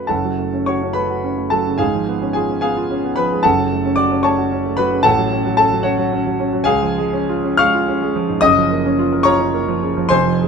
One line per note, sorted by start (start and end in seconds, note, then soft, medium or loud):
0.00 0.10 F#2 soft
0.00 0.14 F#3 soft
0.00 0.14 A3 soft
0.00 0.14 C#4 soft
0.00 0.14 F#4 medium
0.00 0.14 B4 soft
0.00 0.14 C#5 soft
0.00 0.09 F#5 medium
0.00 0.14 B5 medium
0.07 1.76 F#1 soft
0.07 1.76 F#2 soft
0.07 0.63 A4 soft
0.07 0.63 F#5 soft
0.07 0.67 A5 medium
0.25 0.48 F#3 soft
0.39 0.63 A3 soft
0.53 0.77 C#4 soft
0.66 0.91 F#4 soft
0.66 0.94 C#5 medium
0.66 0.96 C#6 medium
0.82 1.05 C#4 soft
0.93 1.19 A3 soft
0.93 1.48 B4 medium
0.93 1.52 B5 medium
1.10 1.33 F#4 soft
1.24 1.47 C#4 soft
1.38 1.61 A3 soft
1.50 1.75 F#3 soft
1.50 1.78 A4 medium
1.50 1.80 A5 medium
1.67 1.81 C#3 soft
1.78 3.41 G#1 soft
1.78 3.41 G#2 soft
1.78 2.31 G#4 medium
1.78 2.31 F5 medium
1.78 2.32 G#5 medium
1.94 2.17 F3 soft
2.08 2.31 B3 soft
2.22 2.44 C#4 soft
2.33 2.58 F4 soft
2.33 2.60 G#4 medium
2.33 2.60 G#5 medium
2.49 2.72 C#4 soft
2.61 2.85 B3 soft
2.61 3.14 G#4 medium
2.61 3.13 F5 medium
2.61 3.17 G#5 medium
2.77 2.99 F4 soft
2.91 3.13 C#4 soft
3.05 3.27 B3 soft
3.16 3.40 F3 soft
3.16 3.43 B4 medium
3.16 3.44 B5 medium
3.32 3.46 G#3 soft
3.43 5.02 F#1 medium
3.43 5.02 F#2 medium
3.43 3.95 A4 medium
3.43 3.95 F#5 medium
3.43 3.98 A5 medium
3.59 3.81 F#3 soft
3.72 3.94 A3 soft
3.86 4.08 C#4 soft
3.96 4.20 F#4 soft
3.96 4.23 D5 medium
3.96 4.24 D6 medium
4.12 4.34 C#4 soft
4.23 4.47 A3 soft
4.23 4.75 C#5 medium
4.23 4.75 A5 medium
4.23 4.78 C#6 medium
4.38 4.60 F#4 soft
4.52 4.74 C#4 soft
4.66 4.87 A3 medium
4.77 5.01 F#3 soft
4.77 5.03 B4 medium
4.77 5.05 B5 medium
4.92 5.06 C#3 soft
5.03 6.63 A1 medium
5.03 6.64 A2 medium
5.03 5.55 A4 medium
5.03 5.55 F#5 medium
5.03 5.56 A5 loud
5.18 5.40 F#3 soft
5.32 5.54 C#4 medium
5.45 5.67 F#3 medium
5.57 5.81 C#4 soft
5.57 5.84 A4 medium
5.57 5.85 A5 loud
5.72 5.94 F#3 soft
5.83 6.07 C#4 medium
5.83 6.10 F#4 medium
5.83 6.10 C#5 medium
5.83 6.12 F#5 medium
5.98 6.21 F#3 medium
6.13 6.35 C#4 medium
6.26 6.49 F#3 medium
6.40 6.62 C#4 medium
6.53 6.68 F#3 soft
6.64 8.38 C#2 medium
6.64 7.55 G#4 medium
6.64 7.55 F5 medium
6.64 7.58 G#5 loud
6.82 7.07 F3 soft
6.98 7.23 G#3 medium
7.13 7.39 C#4 medium
7.29 7.54 F4 medium
7.44 7.69 C#4 medium
7.57 7.83 G#3 medium
7.57 8.38 F5 medium
7.57 8.38 C#6 medium
7.57 8.42 F6 loud
7.74 7.96 F4 medium
7.88 8.10 C#4 medium
8.02 8.24 G#3 medium
8.15 8.37 F3 medium
8.29 8.43 G#2 soft
8.41 10.07 F#1 medium
8.41 10.07 F#2 medium
8.41 9.22 D#5 medium
8.41 9.26 D#6 loud
8.57 8.79 F3 soft
8.71 8.94 A#3 medium
8.86 9.08 C#4 medium
8.99 9.21 F4 medium
9.12 9.35 A#4 medium
9.23 9.49 F4 medium
9.23 10.07 C#5 medium
9.23 10.06 A#5 medium
9.23 10.10 C#6 loud
9.39 9.62 C#4 medium
9.54 9.76 A#3 medium
9.68 9.91 F3 medium
9.83 10.06 C#3 medium
9.97 10.11 F3 medium
10.09 10.48 F1 medium
10.09 10.48 F2 medium
10.09 10.48 C5 medium
10.09 10.48 G#5 medium
10.09 10.48 C6 loud
10.26 10.48 F3 soft
10.41 10.48 G#3 soft